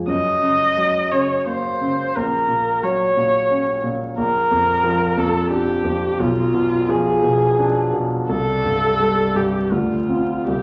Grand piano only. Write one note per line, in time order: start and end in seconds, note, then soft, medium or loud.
0.00 0.10 F3 soft
0.00 0.10 G#3 soft
0.07 2.11 F#2 soft
0.42 0.98 C#3 soft
0.77 1.33 F#3 soft
1.12 1.68 C#3 soft
1.46 2.02 A#3 soft
1.81 2.15 C#3 soft
2.16 4.14 A#1 soft
2.48 3.03 A#2 soft
2.83 3.37 F#3 soft
3.17 3.71 A#2 soft
3.50 4.04 C#4 soft
3.83 4.17 A#2 soft
4.17 6.14 A#1 soft
4.51 5.04 F2 soft
4.83 5.37 F3 soft
5.17 5.71 F2 soft
5.50 6.05 D4 soft
5.84 6.19 F2 soft
6.20 8.26 B1 medium
6.54 7.09 B2 soft
6.89 7.44 F3 soft
7.23 7.80 B2 soft
7.59 8.16 D4 soft
7.93 8.29 B2 soft
8.29 9.68 C2 soft
8.64 9.21 G2 soft
8.99 9.57 G3 soft
9.35 9.72 G2 soft
9.71 10.45 D2 soft
10.09 10.44 C4 soft
10.09 10.44 F4 soft
10.47 10.62 C2 soft